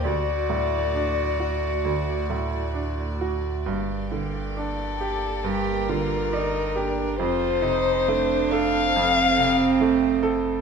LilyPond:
<<
  \new Staff \with { instrumentName = "Violin" } { \time 4/4 \key g \minor \tempo 4 = 68 d''2.~ d''8 r8 | r4 a'4 bes'2 | c''4. f''2 r8 | }
  \new Staff \with { instrumentName = "String section" } { \time 4/4 \key g \minor <a fis' d''>1 | <bes g' d''>1 | <c' a' c''>1 | }
  \new Staff \with { instrumentName = "Cello" } { \time 4/4 \key g \minor fis'2.~ fis'8 r8 | r2 g'8 f'8 ees'8 d'8 | f'8 ees'8 d'4 c'2 | }
  \new Staff \with { instrumentName = "Grand piano" } { \clef bass \time 4/4 \key g \minor d,8 a,8 d'8 fis'8 d,8 a,8 d'8 fis'8 | g,8 d8 d'8 g'8 g,8 d8 d''8 g'8 | f,8 c8 a8 a'8 f,8 c8 a8 a'8 | }
  \new Staff \with { instrumentName = "Sub bass" } { \clef bass \time 4/4 \key g \minor d,1 | g,,1 | f,,1 | }
>>